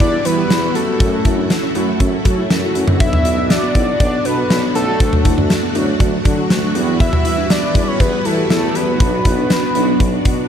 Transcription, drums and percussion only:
0.00 kick loud
0.00 closed hi-hat medium
0.25 closed hi-hat medium
0.50 snare loud
0.50 closed hi-hat medium
0.75 closed hi-hat medium
1.00 kick loud
1.00 closed hi-hat medium
1.25 kick loud
1.25 closed hi-hat medium
1.50 snare loud
1.50 closed hi-hat medium
1.75 closed hi-hat medium
1.75 cowbell medium
2.00 kick loud
2.00 closed hi-hat medium
2.25 kick loud
2.25 closed hi-hat medium
2.25 cowbell medium
2.50 snare loud
2.50 closed hi-hat medium
2.75 closed hi-hat medium
2.87 mid tom medium
3.00 kick loud
3.00 closed hi-hat medium
3.13 mid tom medium
3.25 closed hi-hat medium
3.50 snare loud
3.50 closed hi-hat medium
3.75 kick loud
3.75 closed hi-hat medium
4.00 kick loud
4.00 closed hi-hat medium
4.25 closed hi-hat medium
4.50 snare loud
4.50 closed hi-hat medium
4.75 closed hi-hat medium
5.00 kick loud
5.00 closed hi-hat medium
5.13 mid tom medium
5.25 kick loud
5.25 closed hi-hat medium
5.38 mid tom medium
5.50 snare loud
5.50 closed hi-hat medium
5.75 closed hi-hat medium
5.75 cowbell medium
6.00 kick loud
6.00 closed hi-hat medium
6.25 kick loud
6.25 closed hi-hat medium
6.50 snare loud
6.50 closed hi-hat medium
6.75 closed hi-hat medium
6.75 cowbell medium
7.00 kick loud
7.00 closed hi-hat medium
7.13 mid tom medium
7.25 closed hi-hat medium
7.50 snare loud
7.50 closed hi-hat medium
7.75 kick loud
7.75 closed hi-hat medium
8.00 kick loud
8.00 closed hi-hat medium
8.25 closed hi-hat medium
8.50 snare loud
8.50 closed hi-hat medium
8.75 closed hi-hat medium
9.00 kick loud
9.00 closed hi-hat medium
9.25 kick loud
9.25 closed hi-hat medium
9.50 snare loud
9.50 closed hi-hat medium
9.75 closed hi-hat medium
10.00 kick loud
10.00 closed hi-hat medium
10.25 kick loud
10.25 closed hi-hat medium

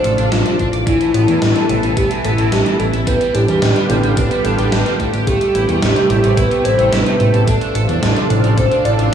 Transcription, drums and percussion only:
0.04 closed hi-hat medium
0.18 closed hi-hat soft
0.32 snare loud
0.32 closed hi-hat loud
0.46 closed hi-hat soft
0.59 kick medium
0.59 closed hi-hat soft
0.73 closed hi-hat soft
0.87 kick loud
0.87 closed hi-hat medium
1.01 closed hi-hat soft
1.14 closed hi-hat medium
1.28 closed hi-hat soft
1.42 snare loud
1.42 closed hi-hat medium
1.56 closed hi-hat soft
1.69 closed hi-hat medium
1.69 mid tom medium
1.83 closed hi-hat soft
1.97 kick loud
1.97 closed hi-hat medium
2.11 closed hi-hat soft
2.25 closed hi-hat medium
2.38 closed hi-hat soft
2.52 snare loud
2.52 closed hi-hat medium
2.66 closed hi-hat soft
2.80 closed hi-hat soft
2.94 closed hi-hat soft
3.07 kick loud
3.07 closed hi-hat medium
3.21 closed hi-hat soft
3.35 closed hi-hat medium
3.48 closed hi-hat soft
3.62 snare loud
3.62 closed hi-hat medium
3.76 closed hi-hat soft
3.90 closed hi-hat medium
3.90 mid tom medium
4.03 closed hi-hat soft
4.17 kick loud
4.17 closed hi-hat medium
4.17 mid tom medium
4.31 closed hi-hat soft
4.45 closed hi-hat medium
4.59 closed hi-hat soft
4.72 snare loud
4.72 closed hi-hat medium
4.86 closed hi-hat soft
5.00 kick medium
5.00 closed hi-hat soft
5.14 closed hi-hat soft
5.27 kick loud
5.27 closed hi-hat medium
5.41 closed hi-hat soft
5.55 closed hi-hat medium
5.69 closed hi-hat soft
5.82 snare loud
5.82 closed hi-hat medium
5.96 closed hi-hat soft
6.10 closed hi-hat medium
6.10 mid tom medium
6.24 closed hi-hat soft
6.37 kick loud
6.37 closed hi-hat medium
6.51 closed hi-hat soft
6.65 closed hi-hat medium
6.79 closed hi-hat soft
6.93 snare loud
6.93 closed hi-hat medium
7.06 closed hi-hat soft
7.20 closed hi-hat soft
7.34 closed hi-hat soft
7.47 kick loud
7.47 closed hi-hat medium
7.61 closed hi-hat soft
7.75 closed hi-hat medium
7.89 closed hi-hat soft
8.03 snare loud
8.03 closed hi-hat medium
8.16 closed hi-hat soft
8.30 closed hi-hat medium
8.30 mid tom loud
8.44 closed hi-hat soft
8.58 kick loud
8.58 closed hi-hat medium
8.58 mid tom medium
8.71 closed hi-hat soft
8.85 closed hi-hat medium
8.99 closed hi-hat soft

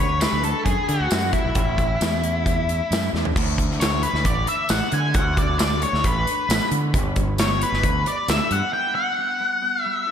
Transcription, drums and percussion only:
0.21 snare loud
0.21 closed hi-hat medium
0.21 tambourine loud
0.44 closed hi-hat medium
0.66 kick medium
0.66 closed hi-hat medium
0.89 closed hi-hat medium
1.11 snare loud
1.11 closed hi-hat medium
1.11 tambourine loud
1.33 kick medium
1.33 closed hi-hat medium
1.55 kick loud
1.55 closed hi-hat medium
1.78 kick medium
1.78 closed hi-hat medium
2.01 snare loud
2.01 closed hi-hat medium
2.01 tambourine loud
2.23 closed hi-hat medium
2.46 kick medium
2.46 closed hi-hat medium
2.69 closed hi-hat medium
2.92 snare loud
2.92 closed hi-hat medium
2.92 tambourine loud
3.15 snare soft
3.25 floor tom medium
3.36 kick loud
3.36 crash loud
3.58 kick medium
3.58 closed hi-hat medium
3.71 snare soft
3.81 snare loud
3.81 closed hi-hat medium
3.81 tambourine loud
4.03 closed hi-hat medium
4.15 snare soft
4.25 kick medium
4.25 closed hi-hat medium
4.47 closed hi-hat medium
4.69 snare loud
4.69 closed hi-hat medium
4.69 tambourine loud
4.92 closed hi-hat medium
5.14 kick loud
5.14 closed hi-hat medium
5.37 kick medium
5.37 closed hi-hat medium
5.59 snare loud
5.59 closed hi-hat medium
5.59 tambourine loud
5.82 closed hi-hat medium
5.95 snare soft
6.04 kick medium
6.04 closed hi-hat medium
6.27 closed hi-hat medium
6.50 snare loud
6.50 closed hi-hat medium
6.50 tambourine loud
6.71 closed hi-hat medium
6.94 kick loud
6.94 closed hi-hat medium
7.16 kick medium
7.16 closed hi-hat medium
7.38 snare loud
7.38 closed hi-hat medium
7.38 tambourine loud
7.61 closed hi-hat medium
7.74 snare soft
7.83 kick medium
7.83 closed hi-hat medium
8.06 closed hi-hat medium
8.28 snare loud
8.28 closed hi-hat medium
8.28 tambourine loud
8.51 closed hi-hat medium

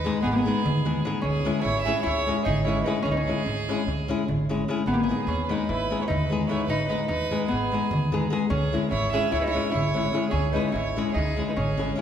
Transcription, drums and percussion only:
0.07 darbuka tek medium
0.17 darbuka tek soft
0.26 darbuka tek medium
0.57 darbuka tek soft
0.66 darbuka dum loud
0.77 darbuka tek soft
0.86 darbuka tek medium
0.96 darbuka tek soft
1.05 darbuka tek medium
1.25 darbuka dum medium
1.46 darbuka tek medium
1.56 darbuka tek soft
1.65 darbuka tek medium
1.77 darbuka tek soft
1.87 darbuka tek medium
1.97 darbuka tek soft
2.07 darbuka tek medium
2.30 darbuka tek medium
2.39 darbuka tek soft
2.48 darbuka dum medium
2.58 darbuka tek soft
2.69 darbuka tek medium
2.78 darbuka tek soft
2.87 darbuka tek medium
3.06 darbuka dum medium
3.28 darbuka tek medium
3.38 darbuka tek soft
3.47 darbuka tek medium
3.59 darbuka tek soft
3.69 darbuka tek medium
3.78 darbuka tek soft
3.88 darbuka tek medium
3.88 darbuka dum medium
3.98 darbuka tek soft
4.09 darbuka tek medium
4.20 darbuka tek soft
4.29 darbuka dum medium
4.40 darbuka tek soft
4.50 darbuka tek medium
4.69 darbuka tek medium
4.87 darbuka dum medium
5.20 darbuka tek soft
5.29 darbuka tek medium
5.40 darbuka tek soft
5.50 darbuka tek medium
5.61 darbuka tek soft
5.69 darbuka tek medium
5.92 darbuka tek soft
6.02 darbuka tek soft
6.10 darbuka dum medium
6.20 darbuka tek soft
6.40 darbuka tek soft
6.49 darbuka tek medium
6.68 darbuka dum medium
6.89 darbuka tek medium
7.00 darbuka tek soft
7.09 darbuka tek medium
7.20 darbuka tek soft
7.32 darbuka tek medium
7.42 darbuka tek soft
7.52 darbuka tek medium
7.73 darbuka tek medium
7.84 darbuka tek soft
7.93 darbuka dum medium
8.04 darbuka tek soft
8.14 darbuka tek medium
8.24 darbuka tek soft
8.33 darbuka tek medium
8.52 darbuka dum medium
8.74 darbuka tek medium
8.84 darbuka tek soft
8.93 darbuka tek medium
9.04 darbuka tek soft
9.15 darbuka tek medium
9.25 darbuka tek soft
9.34 darbuka tek medium
9.56 darbuka tek medium
9.65 darbuka tek soft
9.75 darbuka dum loud
9.87 darbuka tek soft
9.97 darbuka tek medium
10.06 darbuka tek soft
10.16 darbuka tek medium
10.34 darbuka dum medium
10.47 darbuka tek soft
10.57 darbuka tek medium
10.76 darbuka tek medium
10.87 darbuka tek soft
10.98 darbuka tek medium
11.18 darbuka tek medium
11.18 darbuka dum medium
11.30 darbuka tek soft
11.41 darbuka tek medium
11.60 darbuka dum medium
11.70 darbuka tek soft
11.81 darbuka tek medium

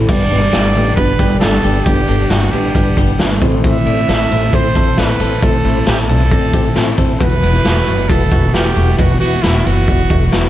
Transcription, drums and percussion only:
0.09 kick loud
0.09 crash loud
0.31 ride medium
0.52 snare loud
0.52 ride medium
0.75 ride medium
0.97 kick loud
0.97 ride medium
1.19 kick loud
1.19 ride medium
1.41 snare loud
1.41 ride medium
1.63 ride medium
1.86 kick loud
1.86 ride medium
2.08 ride medium
2.30 snare loud
2.30 ride medium
2.53 ride medium
2.75 kick loud
2.75 ride medium
2.97 kick loud
2.97 ride medium
3.19 snare loud
3.19 ride medium
3.41 kick loud
3.41 ride medium
3.64 kick loud
3.64 ride medium
3.86 ride medium
4.09 snare loud
4.09 ride medium
4.31 ride medium
4.53 kick loud
4.53 ride medium
4.75 kick loud
4.75 ride medium
4.98 snare loud
4.98 ride medium
5.20 ride medium
5.42 kick loud
5.42 ride medium
5.64 ride medium
5.86 snare loud
5.86 ride medium
6.09 ride medium
6.31 kick loud
6.31 ride medium
6.53 kick loud
6.53 ride medium
6.76 snare loud
6.76 ride medium
6.98 kick medium
6.98 open hi-hat medium
6.98 ride medium
7.20 kick loud
7.20 hi-hat pedal medium
7.20 ride medium
7.43 ride medium
7.65 snare loud
7.65 ride medium
7.88 ride medium
8.10 kick loud
8.10 ride medium
8.32 kick loud
8.32 ride medium
8.54 snare loud
8.54 ride medium
8.76 ride medium
8.98 kick loud
8.98 ride medium
9.21 ride medium
9.43 snare loud
9.43 ride medium
9.66 ride medium
9.88 kick loud
9.88 ride medium
10.10 kick loud
10.10 ride medium
10.32 snare loud
10.32 ride medium

